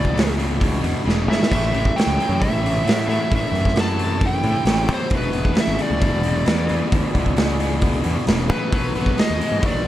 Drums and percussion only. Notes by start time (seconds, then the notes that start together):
0.05 kick
0.17 snare, open hi-hat
0.40 open hi-hat
0.61 kick, open hi-hat
0.84 open hi-hat
1.09 snare
1.32 snare
1.43 snare
1.52 kick, open hi-hat, splash
1.74 open hi-hat
1.85 kick
1.98 snare, open hi-hat
2.20 open hi-hat
2.42 kick, open hi-hat
2.66 open hi-hat
2.88 snare, open hi-hat
3.10 open hi-hat
3.32 kick, open hi-hat
3.55 open hi-hat
3.65 kick, snare
3.76 snare, open hi-hat
3.99 open hi-hat
4.21 kick, open hi-hat
4.43 open hi-hat
4.65 snare, open hi-hat
4.89 open hi-hat
5.10 kick, open hi-hat
5.33 open hi-hat
5.45 kick
5.55 snare, open hi-hat
5.79 open hi-hat
6.01 kick, open hi-hat
6.23 open hi-hat
6.46 snare, open hi-hat
6.69 open hi-hat
6.92 kick, open hi-hat
7.15 kick, open hi-hat
7.26 kick
7.37 snare, open hi-hat
7.60 open hi-hat
7.81 kick, open hi-hat
8.04 open hi-hat
8.27 snare, open hi-hat
8.50 open hi-hat
8.73 kick, open hi-hat
8.95 open hi-hat
9.06 kick
9.18 snare, open hi-hat
9.41 open hi-hat
9.63 kick, open hi-hat